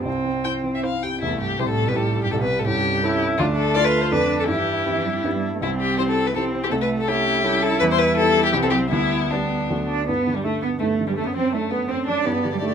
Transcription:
0.04 C2 C4
0.25 C4
0.44 E4 C5 G5
0.64 C4
0.75 E5
0.84 E4 C5 F5
1.03 G4 G5
1.21 C2 E2 A3 E4
1.40 G2 G4
1.59 C3 G3 C4 E4 G4 C5
1.68 A2 A4
1.87 B2 B4
1.95 A2 C4 E4 G4 A4
2.23 G2 G4
2.32 C2 A2 A4
2.41 B2 B4
2.59 A2 A4
2.67 G2 C#4 E4 G4 A4
3.03 C#4 E4 A4
3.38 D2 A3 D4 F4
3.56 A4
3.74 A3 D4 F4 A4 D5
3.84 B4
4.01 C5
4.11 F2 D3 A3 D4 A4 B4
4.40 A4
4.48 G2 E3 E4 G4
4.85 E3 C4 E4 G4
5.05 G3
5.24 G2 B3 D4 G4
5.34 G3
5.54 A3
5.61 C2 G3 C4 E4
5.80 G4
5.98 C4 E4 G4 C5
6.09 A4
6.27 B4
6.35 C4 E4 G4 A4
6.64 G4
6.71 C2 A3 A4
6.81 B4
7.01 A4
7.08 A3 C#4 E4 G4 A4
7.44 G3 C#4 E4 A4
7.62 A4
7.80 E2 G3 B4
7.91 C5
7.98 B4
8.16 B3 E4 G4 A4
8.45 G4
8.52 C2 E3 C4 E4 G4
8.63 A4
8.70 F#3 G4
8.89 D2 G3 B3 E4
9.30 G3 B3 D4 G4
9.69 D2 F#3 A3 D4 F#4
9.89 D4
10.06 G2 B3
10.27 D3
10.35 G3
10.44 A3 D4
10.62 B3
10.79 G2 A3
11.01 D3
11.07 G3
11.16 F#2 A3
11.26 B3
11.35 F#3 C4
11.53 A3 D4
11.70 A3 B3
11.88 F#2 C4
12.06 F#3 D4
12.24 G2 B3 G4 D5
12.44 D3
12.53 G3
12.61 A3 D4

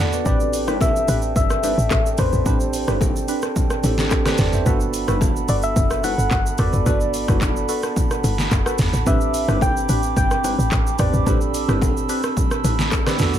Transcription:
Already playing: B3 F#4 A4 D5 A5 B5
0.00 D5 F#5
0.13 B4 D5, shaker
0.24 A1 C4 D4 G4 A4 B4 D5 G5 A5, kick, low conga, shaker
0.29 B4
0.40 shaker
0.53 open hi-hat, shaker
0.67 G1 C4 D4 G4 B4, cross-stick, low bongo, shaker
0.81 E5, kick, high bongo, low bongo, low conga, shaker
0.96 shaker
1.08 A1 C4 D4 G4 B4, open hi-hat, shaker
1.22 shaker
1.36 G1 E5, kick, low conga, shaker
1.50 cross-stick, shaker
1.63 C4 D4 G4 B4, open hi-hat, low bongo, shaker
1.78 A1, shaker
1.91 A1, kick, clap, high bongo, shaker
2.06 shaker
2.18 A1 C4 D4 G4 B4 C5, cross-stick, mid tom, open hi-hat, shaker
2.33 A1, mid tom, shaker
2.45 A1 C4 D4 G4 B4, kick, low conga, shaker
2.49 C5
2.60 shaker
2.73 open hi-hat, shaker
2.88 G1 C4 D4 G4 B4, cross-stick, low bongo, shaker
3.01 kick, high bongo, low bongo, low conga, shaker
3.16 shaker
3.28 C4 D4 G4 B4, open hi-hat, shaker
3.42 cross-stick, shaker
3.56 kick, low conga, shaker
3.70 cross-stick, shaker
3.83 A1 C4 D4 G4 A4, open hi-hat, low bongo, shaker
3.98 snare, shaker
4.11 kick, clap, high bongo, shaker
4.25 C4 D4 G4 A4 B4 C5, cross-stick, snare, shaker
4.38 G1 B4 D5, snare, mid tom, open hi-hat, shaker
4.53 C5 E5, mid tom, shaker
4.65 G1 B3 D4 F#4 A4 B4 F#5 B5, kick, low conga, shaker
4.69 A4
4.80 shaker
4.94 open hi-hat, shaker
5.08 F#1 F#4 A4 B4, cross-stick, low bongo, shaker
5.21 kick, high bongo, low bongo, low conga, shaker
5.36 shaker
5.48 G1 F#4 A4 B4 D5, open hi-hat, shaker
5.62 E5, shaker
5.76 F#1, kick, low conga, shaker
5.90 cross-stick, shaker
6.03 F#4 A4 B4 F#5, open hi-hat, low bongo, shaker
6.18 G1, shaker
6.31 G1 F#5, kick, clap, high bongo, shaker
6.46 shaker
6.58 G1 F#4 A4 B4 D5, cross-stick, mid tom, open hi-hat, shaker
6.73 G1, mid tom, shaker
6.85 G1 B3 D4 F#4 A4 B4, kick, low conga, shaker
6.89 A4
7.01 shaker
7.14 open hi-hat, shaker
7.28 F#1 F#4 A4 B4, kick, cross-stick, low bongo, shaker
7.41 kick, clap, high bongo, low bongo, low conga, shaker
7.57 shaker
7.69 F#4 A4 B4, open hi-hat, shaker
7.83 cross-stick, shaker
7.96 kick, low conga, shaker
8.11 cross-stick, shaker
8.24 G1, open hi-hat, low bongo, shaker
8.38 snare, shaker
8.51 F#1, kick, clap, high bongo, shaker
8.66 F#4 A4 B4, cross-stick, shaker
8.78 G1, snare, mid tom, open hi-hat, shaker
8.93 A1, shaker
9.05 A1 C4 D4 G4 B4 E5 D6, kick, low conga, shaker
9.10 B4
9.21 shaker
9.34 open hi-hat, shaker
9.48 G1 C4 D4 G4 B4, cross-stick, low bongo, shaker
9.61 G5, kick, high bongo, low bongo, low conga, shaker
9.77 shaker
9.89 A1 C4 D4 G4 B4, open hi-hat, shaker
10.03 shaker
10.17 G1 G5, kick, low conga, shaker
10.31 cross-stick, shaker
10.44 C4 D4 G4 B4, open hi-hat, low bongo, shaker
10.59 A1, shaker
10.71 A1, kick, clap, high bongo, shaker
10.87 shaker
10.99 A1 C4 D4 G4 B4 D5, cross-stick, mid tom, open hi-hat, shaker
11.13 A1, mid tom, shaker
11.25 A1 C4 D4 G4 B4 E6, kick, low conga, shaker
11.30 A4
11.41 shaker
11.54 open hi-hat, shaker
11.68 G1 C4 D4 G4 B4, cross-stick, low bongo, shaker
11.82 kick, high bongo, low bongo, low conga, shaker
11.97 shaker
12.09 C4 D4 G4 B4, open hi-hat, shaker
12.23 cross-stick, shaker
12.37 kick, low conga, shaker
12.51 cross-stick, shaker
12.64 A1, open hi-hat, low bongo, shaker
12.79 snare, shaker
12.92 kick, clap, high bongo, shaker
13.06 C4 D4 G4 B4, cross-stick, snare, shaker
13.18 B1 B3 D4 F#4 B4 F#5 A5 D6, snare, mid tom, open hi-hat, shaker
13.22 A4
13.34 mid tom, shaker

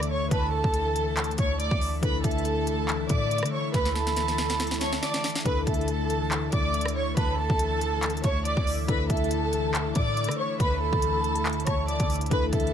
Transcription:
Already playing: D2 D3 E3 A3 D4 E4 A4
0.03 closed hi-hat
0.11 C#5 C#6
0.31 D2 B4 A5 B5, kick, closed hi-hat
0.53 A4 A5
0.64 D2, kick
0.74 closed hi-hat
0.96 closed hi-hat
1.17 clap, closed hi-hat
1.24 closed hi-hat
1.31 closed hi-hat
1.38 D2 C#5 C#6, kick, closed hi-hat
1.60 D5 D6, closed hi-hat
1.71 D2, kick
1.81 open hi-hat
2.01 D2 D3 E3 D4 E4 A4 B4 B5, kick, closed hi-hat
2.24 D2 A4 E5 A5, kick, closed hi-hat
2.31 closed hi-hat
2.38 closed hi-hat
2.45 closed hi-hat
2.67 closed hi-hat
2.88 clap, closed hi-hat
3.09 A2 D5 D6, kick, closed hi-hat
3.31 closed hi-hat
3.38 closed hi-hat
3.43 D3, cross-stick, closed hi-hat
3.53 C#5 C#6
3.74 D2 B4 B5, kick, snare, closed hi-hat
3.85 snare
3.96 A4 A5, snare
4.07 snare
4.16 snare, closed hi-hat
4.28 snare
4.38 snare, closed hi-hat
4.50 snare, closed hi-hat
4.60 snare, closed hi-hat
4.67 closed hi-hat
4.71 snare, closed hi-hat
4.81 C#5 A5 C#6, snare, closed hi-hat
4.93 snare
5.02 D5 D6, snare, closed hi-hat
5.14 snare, closed hi-hat
5.24 snare, closed hi-hat, open hi-hat
5.30 closed hi-hat
5.35 snare, closed hi-hat
5.41 D3, closed hi-hat
5.45 D2 D3 E3 A3 D4 E4 A4 B4 B5, kick, closed hi-hat
5.66 D2 A4 E5 A5, kick, closed hi-hat
5.74 closed hi-hat
5.81 closed hi-hat
5.88 closed hi-hat
6.10 closed hi-hat
6.31 clap, closed hi-hat
6.52 D2 D5 D6, kick, closed hi-hat
6.74 closed hi-hat
6.81 closed hi-hat
6.86 cross-stick, closed hi-hat
6.96 C#5 C#6
7.17 D2 B4 A5 B5, kick, closed hi-hat
7.38 A4 A5
7.50 D2, kick
7.59 closed hi-hat
7.81 closed hi-hat
8.03 clap, closed hi-hat
8.10 closed hi-hat
8.17 closed hi-hat
8.24 D2 C#5 C#6, kick, closed hi-hat
8.45 D5 D6, closed hi-hat
8.57 D2, kick
8.67 open hi-hat
8.87 D2 D3 D4 E4 A4 B4 B5, kick, closed hi-hat
9.09 D2 A4 E5 A5, kick, closed hi-hat
9.17 closed hi-hat
9.24 closed hi-hat
9.31 closed hi-hat
9.53 closed hi-hat
9.74 clap, closed hi-hat
9.95 A2 D5 D6, kick, closed hi-hat
10.17 closed hi-hat
10.24 closed hi-hat
10.28 D3, cross-stick, closed hi-hat
10.39 C#5 C#6
10.60 D2 B4 B5, kick, closed hi-hat
10.82 A4 A5
10.93 D2, kick
11.02 closed hi-hat
11.24 closed hi-hat
11.36 closed hi-hat
11.46 clap, closed hi-hat
11.53 closed hi-hat
11.60 closed hi-hat
11.67 D2 C#5 A5 C#6, kick, cross-stick, closed hi-hat
11.88 D5 D6, closed hi-hat
12.00 D2, kick, closed hi-hat
12.10 closed hi-hat, open hi-hat
12.16 closed hi-hat
12.21 closed hi-hat
12.26 D3, closed hi-hat
12.31 D2 D4 E4 A4 B4 B5, kick, closed hi-hat
12.52 D2 A4 E5 A5, kick, closed hi-hat
12.60 closed hi-hat
12.67 closed hi-hat

